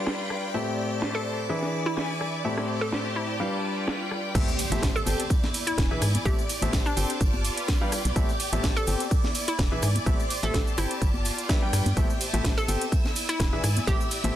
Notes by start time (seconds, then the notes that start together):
Already playing: G3 D4 F4 G4 B4 D5 F5 D6
0.02 B4 G5
0.06 cross-stick, snare
0.30 cross-stick
0.54 A2 C4 G4 A4 E5
0.97 C5 A5
1.02 snare
1.15 A4
1.49 E3 D4 E4 G#4 B4 E5
1.63 snare
1.86 E4
1.93 D5 G#5
1.97 cross-stick, snare
2.21 cross-stick
2.44 A2 C4 G4 A4 E5
2.56 C5, cross-stick, snare
2.81 A4
2.88 A5
2.92 snare
3.16 E4
3.40 G3 D4 F4 G4 B4 F5
3.52 B4
3.83 G5
3.87 cross-stick, snare
4.11 cross-stick
4.35 A1 A2 C4 G4 A4 D5 E5 D6, kick, closed hi-hat, crash, ride, tambourine, impact, shaker
4.48 tambourine, shaker
4.52 C5
4.59 open hi-hat, ride, tambourine, shaker
4.72 A1 A2 C4 G4 A4 E5, closed hi-hat, tambourine, high conga, shaker
4.78 A5
4.83 A1, kick, snare, closed hi-hat, ride, tambourine, shaker
4.96 A4, tambourine, shaker
5.06 G1 C4 G4 A4 G5, open hi-hat, ride, tambourine, high conga, shaker
5.19 closed hi-hat, tambourine, shaker
5.30 E4, kick, closed hi-hat, ride, tambourine, shaker
5.43 snare, tambourine, high conga
5.54 open hi-hat, ride, tambourine, shaker
5.67 E4, closed hi-hat, tambourine, shaker
5.73 D5 G#5
5.78 E1, kick, cross-stick, snare, closed hi-hat, ride, tambourine, high conga, shaker
5.91 B1 E3 D4 G#4 B4 E5
6.02 G#2, cross-stick, open hi-hat, ride, tambourine, shaker
6.14 closed hi-hat, tambourine, high conga, shaker
6.25 A1 A2 C4 G4 A4 E5, kick, closed hi-hat, ride, tambourine, shaker
6.39 tambourine, shaker
6.49 open hi-hat, ride, tambourine, shaker
6.59 A1 A2 C4 G4 A4 C5 E5, closed hi-hat, tambourine, high conga, shaker
6.69 A5
6.73 A1, kick, snare, closed hi-hat, ride, tambourine, shaker
6.86 D4, tambourine, shaker
6.97 G1 C4 G4 A4 G5, open hi-hat, ride, tambourine, shaker
7.09 closed hi-hat, tambourine, shaker
7.21 G1 F4, kick, closed hi-hat, ride, tambourine, shaker
7.34 tambourine, high conga
7.45 open hi-hat, ride, tambourine, shaker
7.50 B4
7.57 closed hi-hat, tambourine, shaker
7.64 G5
7.68 kick, cross-stick, snare, closed hi-hat, ride, tambourine, high conga, shaker
7.81 G3 D4 G4 B4 F5
7.92 cross-stick, open hi-hat, ride, tambourine, shaker
8.04 B1, closed hi-hat, tambourine, high conga, shaker
8.16 A1 A2 C4 G4 A4 E5, kick, closed hi-hat, ride, tambourine, shaker
8.29 tambourine, shaker
8.40 open hi-hat, ride, tambourine, shaker
8.49 A1 A2 C4 G4 A4 E5 A5, closed hi-hat, high conga, shaker
8.54 C5, tambourine
8.63 A1, kick, snare, closed hi-hat, ride, tambourine, shaker
8.76 A4, tambourine, shaker
8.87 G1 C4 G4 A4 G5, open hi-hat, ride, tambourine, high conga, shaker
9.00 closed hi-hat, tambourine, shaker
9.11 E4, kick, closed hi-hat, ride, tambourine, shaker
9.24 snare, tambourine, high conga
9.35 D5, open hi-hat, ride, tambourine, shaker
9.48 E4, closed hi-hat, shaker
9.55 G#5, tambourine
9.59 E1, kick, cross-stick, snare, closed hi-hat, ride, high conga, shaker
9.72 B1 E3 D4 G#4 B4 E5
9.82 G#2, cross-stick, open hi-hat, ride, tambourine, shaker
9.95 closed hi-hat, tambourine, high conga, shaker
10.06 A1 A2 C4 G4 A4 E5, kick, closed hi-hat, ride, tambourine, shaker
10.19 C5, tambourine, shaker
10.30 open hi-hat, ride, tambourine, shaker
10.43 A1 A2 C4 G4 A4 E5, closed hi-hat, tambourine, high conga, shaker
10.50 A5
10.54 A1, kick, snare, closed hi-hat, ride, tambourine, shaker
10.67 tambourine, shaker
10.78 G1 C4 E4 G4 A4 G5, open hi-hat, ride, tambourine, shaker
10.91 closed hi-hat, tambourine, shaker
11.01 G1 F4, kick, closed hi-hat, ride, tambourine, shaker
11.14 tambourine, high conga
11.25 open hi-hat, ride, tambourine, shaker
11.38 closed hi-hat, tambourine, shaker
11.45 B4 G5
11.49 G3 D4 G4 B4 E5, kick, cross-stick, snare, closed hi-hat, ride, tambourine, high conga, shaker
11.62 G3 D4 G4 B4 G5
11.73 G2, cross-stick, open hi-hat, ride, tambourine, shaker
11.86 G2, closed hi-hat, tambourine, high conga, shaker
11.97 A1 A2 C4 G4 A4 E5 E6, kick, closed hi-hat, ride, tambourine, shaker
12.10 tambourine, shaker
12.16 C5
12.21 A5, open hi-hat, ride, tambourine, shaker
12.33 A1 A2 C4 G4 A4 E5, closed hi-hat, tambourine, high conga, shaker
12.44 A1, kick, snare, closed hi-hat, ride, tambourine, shaker
12.57 A4, tambourine, shaker
12.68 G1 C4 G4 A4 G5, open hi-hat, ride, tambourine, high conga, shaker
12.81 closed hi-hat, tambourine, shaker
12.92 E4, kick, closed hi-hat, ride, tambourine, shaker
13.05 D5, snare, tambourine, high conga
13.15 open hi-hat, ride, tambourine, shaker
13.28 E4, closed hi-hat, tambourine, shaker
13.36 G#5, tambourine
13.40 E1, kick, cross-stick, snare, closed hi-hat, ride, high conga, shaker
13.53 B1 E3 D4 G#4 B4 E5
13.64 G#2, cross-stick, open hi-hat, ride, tambourine, shaker
13.77 closed hi-hat, tambourine, high conga, shaker
13.87 A1 A2 C4 G4 A4 E5, kick, closed hi-hat, ride, tambourine, shaker
14.00 tambourine, shaker
14.11 open hi-hat, ride, tambourine, shaker
14.24 A1 A2 C4 G4 A4 C5 E5, closed hi-hat, tambourine, high conga, shaker
14.31 A5